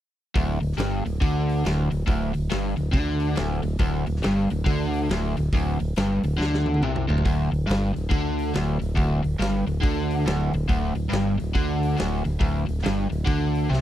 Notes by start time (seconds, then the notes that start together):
0.35 D1 D2, kick, open hi-hat
0.61 D1 D2, open hi-hat
0.72 snare
0.78 G1 G2, snare, open hi-hat
1.05 D1 D2, open hi-hat
1.21 D2 D3, kick, open hi-hat
1.49 open hi-hat
1.65 D1 D2, snare, open hi-hat
1.91 D1 D2, open hi-hat
2.06 D1 D2, kick, open hi-hat
2.34 D1 D2, open hi-hat
2.50 G1 G2, snare, open hi-hat
2.77 D1 D2, open hi-hat
2.93 D2 D3, kick, open hi-hat
3.20 open hi-hat
3.35 D1 D2, snare, open hi-hat
3.63 D1 D2, open hi-hat
3.79 D1 D2, kick, open hi-hat
4.06 D1 D2, open hi-hat
4.16 snare
4.23 G1 G2, snare, open hi-hat
4.50 D1 D2, open hi-hat
4.65 D2 D3, kick, open hi-hat
4.94 open hi-hat
5.09 D1 D2, snare, open hi-hat
5.37 D1 D2, open hi-hat
5.52 D1 D2, kick, open hi-hat
5.80 D1 D2, open hi-hat
5.96 G1 G2, snare, open hi-hat
6.23 D1 D2, open hi-hat
6.38 D2 D3, snare
6.54 snare
6.66 high tom
6.74 high tom
6.80 C2 C3, mid tom
6.96 mid tom
7.08 D1 D2, floor tom
7.18 floor tom
7.25 D1 D2, kick, open hi-hat
7.51 D1 D2, open hi-hat
7.67 G1 G2, open hi-hat
7.71 snare
7.94 D1 D2, open hi-hat
8.10 D2 D3, kick, open hi-hat
8.39 open hi-hat
8.54 D1 D2, snare, open hi-hat
8.80 D1 D2, open hi-hat
8.95 D1 D2, kick, open hi-hat
9.23 D1 D2, open hi-hat
9.39 G1 G2, snare, open hi-hat
9.67 D1 D2, open hi-hat
9.82 D2 D3, kick, open hi-hat
10.10 open hi-hat
10.26 D1 D2, snare, open hi-hat
10.53 D1 D2, open hi-hat
10.68 D1 D2, kick, open hi-hat
10.95 D1 D2, open hi-hat
11.09 G1 G2, open hi-hat
11.13 snare
11.38 D1 D2, open hi-hat
11.54 D2 D3, kick, open hi-hat
11.83 open hi-hat
11.97 D1 D2, snare, open hi-hat
12.25 D1 D2, open hi-hat
12.40 D1 D2, kick, open hi-hat
12.67 D1 D2, open hi-hat
12.79 snare
12.84 G1 G2, snare, open hi-hat
13.10 D1 D2, open hi-hat
13.26 D2 D3, kick, open hi-hat
13.55 open hi-hat
13.70 C2 C3, snare